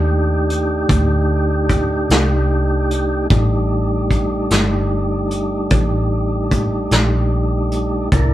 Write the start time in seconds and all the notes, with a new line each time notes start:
Already playing: D#2 A3 D4 D#4 G4
0.50 closed hi-hat
0.89 D2, kick, closed hi-hat
1.69 kick, closed hi-hat
2.09 C2, snare, closed hi-hat
2.91 closed hi-hat
3.30 A1 G3 A3 D4 D#4, kick, closed hi-hat
4.11 kick, closed hi-hat
4.50 G1, snare, closed hi-hat
5.31 closed hi-hat
5.70 A1, kick, closed hi-hat
6.51 kick, closed hi-hat
6.91 A#1, snare, closed hi-hat
7.72 closed hi-hat
8.12 C2 D4 E4 A4 A#4, kick, closed hi-hat